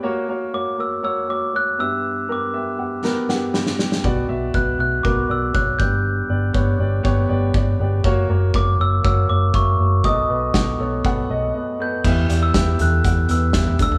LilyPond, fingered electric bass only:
\new Staff \with { instrumentName = "Fingered electric bass" } { \clef bass \time 4/4 \key b \minor \tempo 4 = 120 r1 | r1 | b,,8 b,,8 b,,8 b,,8 b,,8 b,,8 b,,8 g,,8~ | g,,8 g,,8 g,,8 g,,8 g,,8 g,,8 g,,8 g,,8 |
fis,,8 fis,,8 fis,,8 fis,,8 fis,,8 fis,,8 fis,,8 fis,,8 | b,,8 b,,8 b,,8 b,,8 b,,8 b,,8 r4 | \key e \dorian e,8 e,8 e,8 e,8 e,8 e,8 e,8 d,8 | }